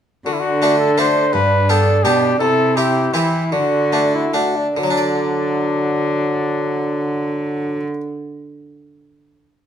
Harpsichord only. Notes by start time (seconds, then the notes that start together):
0.26 D3
0.62 A3 D4 F#4
0.98 A3 D4 F#4
1.33 G2
1.69 B3 D4 G4
2.05 B2 B3 D4 G4
2.41 C3
2.77 C4 E4 G4
3.14 E3 C4 E4 G4
3.52 D3
3.93 A3 D4
4.34 A3 D4
4.77 D3
4.83 F#3
4.90 D4
4.97 D5